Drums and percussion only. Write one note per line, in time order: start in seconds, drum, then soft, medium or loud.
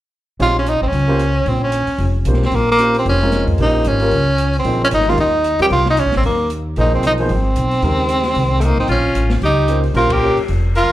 0.40 open hi-hat soft
0.66 closed hi-hat soft
0.93 open hi-hat soft
1.19 closed hi-hat soft
1.46 open hi-hat soft
1.72 closed hi-hat soft
1.87 open hi-hat soft
1.98 open hi-hat soft
2.25 closed hi-hat soft
2.34 snare soft
2.42 snare soft
2.51 open hi-hat soft
2.79 closed hi-hat soft
2.94 open hi-hat soft
3.06 open hi-hat soft
3.32 snare soft
3.32 closed hi-hat soft
3.47 kick soft
3.47 open hi-hat soft
3.58 open hi-hat soft
3.84 closed hi-hat soft
4.00 open hi-hat soft
4.11 open hi-hat soft
4.38 closed hi-hat soft
4.53 open hi-hat soft
4.64 open hi-hat soft
4.91 closed hi-hat medium
5.00 snare soft
5.09 snare soft
5.18 open hi-hat soft
5.44 closed hi-hat soft
5.59 open hi-hat soft
5.70 open hi-hat soft
5.86 snare soft
5.97 closed hi-hat soft
6.12 snare soft
6.12 open hi-hat soft
6.23 open hi-hat soft
6.50 closed hi-hat soft
6.76 open hi-hat soft
7.03 closed hi-hat soft
7.18 open hi-hat soft
7.29 open hi-hat soft
7.56 closed hi-hat soft
7.71 open hi-hat soft
7.82 open hi-hat soft
8.09 closed hi-hat soft
8.23 snare soft
8.23 open hi-hat soft
8.35 open hi-hat soft
8.61 closed hi-hat soft
8.88 open hi-hat soft
9.15 closed hi-hat soft
9.30 snare soft
9.30 open hi-hat soft
9.42 open hi-hat soft
9.68 closed hi-hat soft
9.84 open hi-hat soft
9.95 open hi-hat soft
10.10 kick medium
10.10 ride medium
10.37 open hi-hat soft
10.48 open hi-hat soft
10.75 closed hi-hat soft